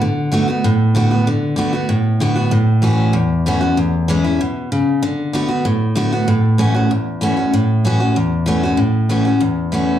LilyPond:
\new Staff \with { instrumentName = "Steel-string acoustic guitar" } { \time 4/4 \key a \major \tempo 4 = 192 << { r4 <d a b fis'>8 <b fis'>8 r4 <d a b fis'>8 <b fis'>8 | r4 <d a b fis'>8 <b fis'>8 r4 <d a b fis'>8 <b fis'>8 | r4 <e a cis' fis'>4 r4 <e a cis' fis'>8 <cis' fis'>8 | r4 <e gis cis' e'>8 <cis' e'>8 r2 |
r4 <d a b fis'>8 <b fis'>8 r4 <d a b fis'>8 <b fis'>8 | r4 <e a cis' fis'>8 <cis' fis'>8 r4 <e a cis' fis'>8 <cis' fis'>8 | r4 <e a cis' fis'>8 <cis' fis'>8 r4 <e a cis' fis'>8 <cis' fis'>8 | r4 <e a cis' fis'>8 <cis' fis'>8 r4 <e a cis' fis'>4 | } \\ { d2 a,2 | d2 a,2 | a,2 e,2 | e,2 b,4 cis4 |
d2 a,2 | a,2 e,2 | a,2 e,2 | a,2 e,2 | } >> }